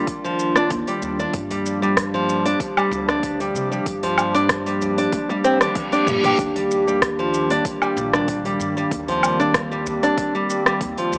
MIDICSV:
0, 0, Header, 1, 7, 480
1, 0, Start_track
1, 0, Tempo, 631579
1, 1015, Time_signature, 4, 2, 24, 8
1, 8497, End_track
2, 0, Start_track
2, 0, Title_t, "Ambient pad"
2, 0, Program_c, 0, 92
2, 0, Note_on_c, 0, 51, 82
2, 0, Note_on_c, 0, 55, 77
2, 0, Note_on_c, 0, 58, 76
2, 0, Note_on_c, 0, 62, 71
2, 0, Note_on_c, 0, 65, 85
2, 982, Note_off_c, 0, 58, 0
2, 983, Note_off_c, 0, 55, 0
2, 983, Note_off_c, 0, 62, 0
2, 984, Note_off_c, 0, 51, 0
2, 996, Note_off_c, 0, 65, 0
2, 1018, Note_on_c, 0, 53, 84
2, 1018, Note_on_c, 0, 58, 68
2, 1018, Note_on_c, 0, 62, 71
2, 1019, Note_on_c, 0, 55, 69
2, 1019, Note_on_c, 0, 67, 94
2, 4826, Note_off_c, 0, 53, 0
2, 4855, Note_on_c, 0, 51, 83
2, 6746, Note_off_c, 0, 62, 0
2, 6773, Note_on_c, 0, 60, 74
2, 8497, Note_off_c, 0, 51, 0
2, 8497, Note_off_c, 0, 55, 0
2, 8497, Note_off_c, 0, 58, 0
2, 8497, Note_off_c, 0, 60, 0
2, 8497, Note_off_c, 0, 67, 0
2, 8497, End_track
3, 0, Start_track
3, 0, Title_t, "Nylon-string guitar"
3, 0, Program_c, 1, 24
3, 185, Note_on_c, 1, 53, 76
3, 411, Note_off_c, 1, 53, 0
3, 426, Note_on_c, 1, 62, 99
3, 530, Note_off_c, 1, 62, 0
3, 665, Note_on_c, 1, 55, 78
3, 891, Note_off_c, 1, 55, 0
3, 907, Note_on_c, 1, 62, 99
3, 1016, Note_off_c, 1, 62, 0
3, 1146, Note_on_c, 1, 55, 82
3, 1372, Note_off_c, 1, 55, 0
3, 1384, Note_on_c, 1, 55, 81
3, 1490, Note_off_c, 1, 55, 0
3, 1626, Note_on_c, 1, 53, 74
3, 1852, Note_off_c, 1, 53, 0
3, 1865, Note_on_c, 1, 62, 103
3, 1970, Note_off_c, 1, 62, 0
3, 2106, Note_on_c, 1, 55, 81
3, 2332, Note_off_c, 1, 55, 0
3, 2347, Note_on_c, 1, 62, 98
3, 2573, Note_off_c, 1, 62, 0
3, 2586, Note_on_c, 1, 55, 80
3, 2812, Note_off_c, 1, 55, 0
3, 2823, Note_on_c, 1, 55, 72
3, 2929, Note_off_c, 1, 55, 0
3, 3064, Note_on_c, 1, 53, 76
3, 3291, Note_off_c, 1, 53, 0
3, 3302, Note_on_c, 1, 62, 99
3, 3408, Note_off_c, 1, 62, 0
3, 3544, Note_on_c, 1, 55, 73
3, 3771, Note_off_c, 1, 55, 0
3, 3784, Note_on_c, 1, 62, 106
3, 4011, Note_off_c, 1, 62, 0
3, 4025, Note_on_c, 1, 55, 79
3, 4124, Note_off_c, 1, 55, 0
3, 4136, Note_on_c, 1, 60, 106
3, 4258, Note_off_c, 1, 60, 0
3, 4265, Note_on_c, 1, 62, 91
3, 4370, Note_off_c, 1, 62, 0
3, 4503, Note_on_c, 1, 62, 105
3, 4609, Note_off_c, 1, 62, 0
3, 4745, Note_on_c, 1, 67, 69
3, 4850, Note_off_c, 1, 67, 0
3, 4983, Note_on_c, 1, 55, 76
3, 5210, Note_off_c, 1, 55, 0
3, 5224, Note_on_c, 1, 55, 76
3, 5329, Note_off_c, 1, 55, 0
3, 5464, Note_on_c, 1, 53, 76
3, 5691, Note_off_c, 1, 53, 0
3, 5704, Note_on_c, 1, 62, 106
3, 5809, Note_off_c, 1, 62, 0
3, 5944, Note_on_c, 1, 55, 75
3, 6171, Note_off_c, 1, 55, 0
3, 6184, Note_on_c, 1, 62, 98
3, 6411, Note_off_c, 1, 62, 0
3, 6424, Note_on_c, 1, 55, 76
3, 6651, Note_off_c, 1, 55, 0
3, 6663, Note_on_c, 1, 55, 79
3, 6769, Note_off_c, 1, 55, 0
3, 6903, Note_on_c, 1, 53, 77
3, 7131, Note_off_c, 1, 53, 0
3, 7141, Note_on_c, 1, 62, 110
3, 7248, Note_off_c, 1, 62, 0
3, 7383, Note_on_c, 1, 55, 75
3, 7610, Note_off_c, 1, 55, 0
3, 7623, Note_on_c, 1, 62, 108
3, 7850, Note_off_c, 1, 62, 0
3, 7863, Note_on_c, 1, 55, 81
3, 8091, Note_off_c, 1, 55, 0
3, 8103, Note_on_c, 1, 55, 75
3, 8209, Note_off_c, 1, 55, 0
3, 8342, Note_on_c, 1, 53, 80
3, 8497, Note_off_c, 1, 53, 0
3, 8497, End_track
4, 0, Start_track
4, 0, Title_t, "Upright bass"
4, 0, Program_c, 2, 32
4, 536, Note_on_c, 2, 39, 110
4, 627, Note_off_c, 2, 39, 0
4, 775, Note_on_c, 2, 39, 88
4, 950, Note_off_c, 2, 39, 0
4, 1016, Note_on_c, 2, 43, 97
4, 1924, Note_off_c, 2, 43, 0
4, 2215, Note_on_c, 2, 38, 101
4, 2643, Note_off_c, 2, 38, 0
4, 2695, Note_on_c, 2, 48, 85
4, 2870, Note_off_c, 2, 48, 0
4, 2936, Note_on_c, 2, 43, 92
4, 3843, Note_off_c, 2, 43, 0
4, 4614, Note_on_c, 2, 43, 81
4, 4789, Note_off_c, 2, 43, 0
4, 4854, Note_on_c, 2, 39, 89
4, 5762, Note_off_c, 2, 39, 0
4, 6055, Note_on_c, 2, 34, 96
4, 6483, Note_off_c, 2, 34, 0
4, 6534, Note_on_c, 2, 43, 93
4, 6709, Note_off_c, 2, 43, 0
4, 6774, Note_on_c, 2, 39, 96
4, 7683, Note_off_c, 2, 39, 0
4, 8214, Note_on_c, 2, 39, 101
4, 8305, Note_off_c, 2, 39, 0
4, 8453, Note_on_c, 2, 39, 88
4, 8497, Note_off_c, 2, 39, 0
4, 8497, End_track
5, 0, Start_track
5, 0, Title_t, "Reverse cymbal"
5, 0, Program_c, 3, 119
5, 3893, Note_on_c, 3, 60, 61
5, 4854, Note_off_c, 3, 60, 0
5, 8497, End_track
6, 0, Start_track
6, 0, Title_t, "Udu"
6, 1144, Note_on_c, 9, 64, 83
6, 1220, Note_off_c, 9, 64, 0
6, 2340, Note_on_c, 9, 64, 70
6, 2416, Note_off_c, 9, 64, 0
6, 3065, Note_on_c, 9, 64, 90
6, 3141, Note_off_c, 9, 64, 0
6, 3657, Note_on_c, 9, 64, 84
6, 3733, Note_off_c, 9, 64, 0
6, 4986, Note_on_c, 9, 64, 84
6, 5062, Note_off_c, 9, 64, 0
6, 6185, Note_on_c, 9, 64, 83
6, 6261, Note_off_c, 9, 64, 0
6, 6906, Note_on_c, 9, 64, 100
6, 6982, Note_off_c, 9, 64, 0
6, 7499, Note_on_c, 9, 64, 96
6, 7575, Note_off_c, 9, 64, 0
6, 8497, End_track
7, 0, Start_track
7, 0, Title_t, "Drums"
7, 55, Note_on_c, 9, 36, 98
7, 55, Note_on_c, 9, 46, 67
7, 60, Note_on_c, 9, 82, 45
7, 131, Note_off_c, 9, 36, 0
7, 131, Note_off_c, 9, 46, 0
7, 136, Note_off_c, 9, 82, 0
7, 189, Note_on_c, 9, 82, 21
7, 265, Note_off_c, 9, 82, 0
7, 299, Note_on_c, 9, 82, 71
7, 375, Note_off_c, 9, 82, 0
7, 422, Note_on_c, 9, 37, 75
7, 428, Note_on_c, 9, 82, 33
7, 498, Note_off_c, 9, 37, 0
7, 504, Note_off_c, 9, 82, 0
7, 534, Note_on_c, 9, 46, 61
7, 536, Note_on_c, 9, 36, 100
7, 539, Note_on_c, 9, 82, 42
7, 610, Note_off_c, 9, 46, 0
7, 612, Note_off_c, 9, 36, 0
7, 615, Note_off_c, 9, 82, 0
7, 663, Note_on_c, 9, 46, 32
7, 668, Note_on_c, 9, 82, 22
7, 739, Note_off_c, 9, 46, 0
7, 744, Note_off_c, 9, 82, 0
7, 777, Note_on_c, 9, 82, 75
7, 853, Note_off_c, 9, 82, 0
7, 909, Note_on_c, 9, 82, 30
7, 985, Note_off_c, 9, 82, 0
7, 1014, Note_on_c, 9, 46, 68
7, 1016, Note_on_c, 9, 36, 99
7, 1020, Note_on_c, 9, 82, 43
7, 1090, Note_off_c, 9, 46, 0
7, 1092, Note_off_c, 9, 36, 0
7, 1096, Note_off_c, 9, 82, 0
7, 1144, Note_on_c, 9, 46, 43
7, 1149, Note_on_c, 9, 82, 21
7, 1220, Note_off_c, 9, 46, 0
7, 1225, Note_off_c, 9, 82, 0
7, 1261, Note_on_c, 9, 82, 71
7, 1337, Note_off_c, 9, 82, 0
7, 1390, Note_on_c, 9, 82, 34
7, 1466, Note_off_c, 9, 82, 0
7, 1496, Note_on_c, 9, 36, 86
7, 1497, Note_on_c, 9, 37, 79
7, 1497, Note_on_c, 9, 46, 72
7, 1502, Note_on_c, 9, 82, 47
7, 1572, Note_off_c, 9, 36, 0
7, 1573, Note_off_c, 9, 37, 0
7, 1573, Note_off_c, 9, 46, 0
7, 1578, Note_off_c, 9, 82, 0
7, 1633, Note_on_c, 9, 82, 20
7, 1709, Note_off_c, 9, 82, 0
7, 1743, Note_on_c, 9, 82, 72
7, 1819, Note_off_c, 9, 82, 0
7, 1867, Note_on_c, 9, 46, 41
7, 1872, Note_on_c, 9, 82, 30
7, 1943, Note_off_c, 9, 46, 0
7, 1948, Note_off_c, 9, 82, 0
7, 1976, Note_on_c, 9, 36, 99
7, 1978, Note_on_c, 9, 46, 70
7, 1983, Note_on_c, 9, 82, 44
7, 2052, Note_off_c, 9, 36, 0
7, 2054, Note_off_c, 9, 46, 0
7, 2059, Note_off_c, 9, 82, 0
7, 2107, Note_on_c, 9, 77, 62
7, 2112, Note_on_c, 9, 82, 19
7, 2183, Note_off_c, 9, 77, 0
7, 2188, Note_off_c, 9, 82, 0
7, 2222, Note_on_c, 9, 82, 73
7, 2298, Note_off_c, 9, 82, 0
7, 2345, Note_on_c, 9, 37, 81
7, 2350, Note_on_c, 9, 82, 31
7, 2421, Note_off_c, 9, 37, 0
7, 2426, Note_off_c, 9, 82, 0
7, 2456, Note_on_c, 9, 36, 102
7, 2456, Note_on_c, 9, 46, 72
7, 2461, Note_on_c, 9, 82, 42
7, 2532, Note_off_c, 9, 36, 0
7, 2532, Note_off_c, 9, 46, 0
7, 2537, Note_off_c, 9, 82, 0
7, 2586, Note_on_c, 9, 46, 31
7, 2591, Note_on_c, 9, 82, 22
7, 2662, Note_off_c, 9, 46, 0
7, 2667, Note_off_c, 9, 82, 0
7, 2702, Note_on_c, 9, 82, 76
7, 2778, Note_off_c, 9, 82, 0
7, 2829, Note_on_c, 9, 82, 30
7, 2905, Note_off_c, 9, 82, 0
7, 2935, Note_on_c, 9, 36, 101
7, 2935, Note_on_c, 9, 46, 74
7, 2940, Note_on_c, 9, 82, 47
7, 3011, Note_off_c, 9, 36, 0
7, 3011, Note_off_c, 9, 46, 0
7, 3016, Note_off_c, 9, 82, 0
7, 3063, Note_on_c, 9, 46, 44
7, 3068, Note_on_c, 9, 82, 20
7, 3139, Note_off_c, 9, 46, 0
7, 3144, Note_off_c, 9, 82, 0
7, 3174, Note_on_c, 9, 77, 60
7, 3179, Note_on_c, 9, 82, 71
7, 3250, Note_off_c, 9, 77, 0
7, 3255, Note_off_c, 9, 82, 0
7, 3303, Note_on_c, 9, 46, 33
7, 3308, Note_on_c, 9, 82, 34
7, 3379, Note_off_c, 9, 46, 0
7, 3384, Note_off_c, 9, 82, 0
7, 3414, Note_on_c, 9, 37, 78
7, 3414, Note_on_c, 9, 46, 75
7, 3416, Note_on_c, 9, 36, 93
7, 3419, Note_on_c, 9, 82, 45
7, 3490, Note_off_c, 9, 37, 0
7, 3490, Note_off_c, 9, 46, 0
7, 3492, Note_off_c, 9, 36, 0
7, 3495, Note_off_c, 9, 82, 0
7, 3544, Note_on_c, 9, 46, 33
7, 3549, Note_on_c, 9, 82, 23
7, 3620, Note_off_c, 9, 46, 0
7, 3625, Note_off_c, 9, 82, 0
7, 3659, Note_on_c, 9, 82, 71
7, 3735, Note_off_c, 9, 82, 0
7, 3784, Note_on_c, 9, 46, 43
7, 3789, Note_on_c, 9, 82, 30
7, 3860, Note_off_c, 9, 46, 0
7, 3865, Note_off_c, 9, 82, 0
7, 3895, Note_on_c, 9, 36, 96
7, 3895, Note_on_c, 9, 46, 71
7, 3895, Note_on_c, 9, 48, 61
7, 3900, Note_on_c, 9, 82, 43
7, 3971, Note_off_c, 9, 36, 0
7, 3971, Note_off_c, 9, 46, 0
7, 3971, Note_off_c, 9, 48, 0
7, 3976, Note_off_c, 9, 82, 0
7, 4023, Note_on_c, 9, 48, 55
7, 4028, Note_on_c, 9, 82, 21
7, 4099, Note_off_c, 9, 48, 0
7, 4104, Note_off_c, 9, 82, 0
7, 4138, Note_on_c, 9, 82, 73
7, 4214, Note_off_c, 9, 82, 0
7, 4262, Note_on_c, 9, 37, 78
7, 4262, Note_on_c, 9, 46, 33
7, 4262, Note_on_c, 9, 47, 65
7, 4267, Note_on_c, 9, 82, 33
7, 4338, Note_off_c, 9, 37, 0
7, 4338, Note_off_c, 9, 46, 0
7, 4338, Note_off_c, 9, 47, 0
7, 4343, Note_off_c, 9, 82, 0
7, 4373, Note_on_c, 9, 46, 72
7, 4373, Note_on_c, 9, 47, 79
7, 4375, Note_on_c, 9, 36, 100
7, 4378, Note_on_c, 9, 82, 43
7, 4449, Note_off_c, 9, 46, 0
7, 4449, Note_off_c, 9, 47, 0
7, 4451, Note_off_c, 9, 36, 0
7, 4454, Note_off_c, 9, 82, 0
7, 4501, Note_on_c, 9, 46, 33
7, 4506, Note_on_c, 9, 82, 21
7, 4577, Note_off_c, 9, 46, 0
7, 4582, Note_off_c, 9, 82, 0
7, 4613, Note_on_c, 9, 45, 96
7, 4618, Note_on_c, 9, 82, 80
7, 4689, Note_off_c, 9, 45, 0
7, 4694, Note_off_c, 9, 82, 0
7, 4742, Note_on_c, 9, 45, 87
7, 4742, Note_on_c, 9, 46, 29
7, 4747, Note_on_c, 9, 82, 29
7, 4818, Note_off_c, 9, 45, 0
7, 4818, Note_off_c, 9, 46, 0
7, 4823, Note_off_c, 9, 82, 0
7, 4855, Note_on_c, 9, 36, 113
7, 4855, Note_on_c, 9, 46, 69
7, 4860, Note_on_c, 9, 82, 44
7, 4931, Note_off_c, 9, 36, 0
7, 4931, Note_off_c, 9, 46, 0
7, 4936, Note_off_c, 9, 82, 0
7, 4985, Note_on_c, 9, 46, 42
7, 4990, Note_on_c, 9, 82, 21
7, 5061, Note_off_c, 9, 46, 0
7, 5066, Note_off_c, 9, 82, 0
7, 5101, Note_on_c, 9, 82, 73
7, 5177, Note_off_c, 9, 82, 0
7, 5229, Note_on_c, 9, 82, 35
7, 5305, Note_off_c, 9, 82, 0
7, 5335, Note_on_c, 9, 36, 92
7, 5335, Note_on_c, 9, 37, 81
7, 5335, Note_on_c, 9, 46, 68
7, 5340, Note_on_c, 9, 82, 48
7, 5411, Note_off_c, 9, 36, 0
7, 5411, Note_off_c, 9, 37, 0
7, 5411, Note_off_c, 9, 46, 0
7, 5416, Note_off_c, 9, 82, 0
7, 5468, Note_on_c, 9, 82, 22
7, 5544, Note_off_c, 9, 82, 0
7, 5578, Note_on_c, 9, 82, 75
7, 5654, Note_off_c, 9, 82, 0
7, 5702, Note_on_c, 9, 46, 43
7, 5708, Note_on_c, 9, 82, 31
7, 5778, Note_off_c, 9, 46, 0
7, 5784, Note_off_c, 9, 82, 0
7, 5814, Note_on_c, 9, 46, 71
7, 5815, Note_on_c, 9, 36, 106
7, 5819, Note_on_c, 9, 82, 48
7, 5890, Note_off_c, 9, 46, 0
7, 5891, Note_off_c, 9, 36, 0
7, 5895, Note_off_c, 9, 82, 0
7, 5941, Note_on_c, 9, 77, 55
7, 5946, Note_on_c, 9, 82, 22
7, 6017, Note_off_c, 9, 77, 0
7, 6022, Note_off_c, 9, 82, 0
7, 6058, Note_on_c, 9, 82, 72
7, 6134, Note_off_c, 9, 82, 0
7, 6183, Note_on_c, 9, 37, 79
7, 6188, Note_on_c, 9, 82, 34
7, 6259, Note_off_c, 9, 37, 0
7, 6264, Note_off_c, 9, 82, 0
7, 6293, Note_on_c, 9, 46, 72
7, 6295, Note_on_c, 9, 36, 103
7, 6298, Note_on_c, 9, 82, 45
7, 6369, Note_off_c, 9, 46, 0
7, 6371, Note_off_c, 9, 36, 0
7, 6374, Note_off_c, 9, 82, 0
7, 6423, Note_on_c, 9, 46, 32
7, 6428, Note_on_c, 9, 82, 22
7, 6499, Note_off_c, 9, 46, 0
7, 6504, Note_off_c, 9, 82, 0
7, 6538, Note_on_c, 9, 82, 79
7, 6614, Note_off_c, 9, 82, 0
7, 6668, Note_on_c, 9, 82, 33
7, 6744, Note_off_c, 9, 82, 0
7, 6774, Note_on_c, 9, 36, 110
7, 6775, Note_on_c, 9, 46, 67
7, 6780, Note_on_c, 9, 82, 50
7, 6850, Note_off_c, 9, 36, 0
7, 6851, Note_off_c, 9, 46, 0
7, 6856, Note_off_c, 9, 82, 0
7, 6903, Note_on_c, 9, 46, 45
7, 6908, Note_on_c, 9, 82, 23
7, 6979, Note_off_c, 9, 46, 0
7, 6984, Note_off_c, 9, 82, 0
7, 7015, Note_on_c, 9, 77, 58
7, 7021, Note_on_c, 9, 82, 84
7, 7091, Note_off_c, 9, 77, 0
7, 7097, Note_off_c, 9, 82, 0
7, 7148, Note_on_c, 9, 82, 36
7, 7224, Note_off_c, 9, 82, 0
7, 7253, Note_on_c, 9, 37, 82
7, 7253, Note_on_c, 9, 46, 75
7, 7254, Note_on_c, 9, 36, 101
7, 7258, Note_on_c, 9, 82, 47
7, 7329, Note_off_c, 9, 37, 0
7, 7329, Note_off_c, 9, 46, 0
7, 7330, Note_off_c, 9, 36, 0
7, 7334, Note_off_c, 9, 82, 0
7, 7388, Note_on_c, 9, 82, 22
7, 7464, Note_off_c, 9, 82, 0
7, 7497, Note_on_c, 9, 82, 81
7, 7573, Note_off_c, 9, 82, 0
7, 7623, Note_on_c, 9, 46, 41
7, 7628, Note_on_c, 9, 82, 34
7, 7699, Note_off_c, 9, 46, 0
7, 7704, Note_off_c, 9, 82, 0
7, 7734, Note_on_c, 9, 36, 112
7, 7734, Note_on_c, 9, 46, 72
7, 7739, Note_on_c, 9, 82, 45
7, 7810, Note_off_c, 9, 36, 0
7, 7810, Note_off_c, 9, 46, 0
7, 7815, Note_off_c, 9, 82, 0
7, 7867, Note_on_c, 9, 82, 23
7, 7943, Note_off_c, 9, 82, 0
7, 7979, Note_on_c, 9, 82, 80
7, 8055, Note_off_c, 9, 82, 0
7, 8103, Note_on_c, 9, 37, 85
7, 8108, Note_on_c, 9, 82, 35
7, 8179, Note_off_c, 9, 37, 0
7, 8184, Note_off_c, 9, 82, 0
7, 8214, Note_on_c, 9, 36, 109
7, 8214, Note_on_c, 9, 46, 67
7, 8219, Note_on_c, 9, 82, 49
7, 8290, Note_off_c, 9, 36, 0
7, 8290, Note_off_c, 9, 46, 0
7, 8295, Note_off_c, 9, 82, 0
7, 8342, Note_on_c, 9, 46, 33
7, 8347, Note_on_c, 9, 82, 22
7, 8418, Note_off_c, 9, 46, 0
7, 8423, Note_off_c, 9, 82, 0
7, 8457, Note_on_c, 9, 82, 80
7, 8497, Note_off_c, 9, 82, 0
7, 8497, End_track
0, 0, End_of_file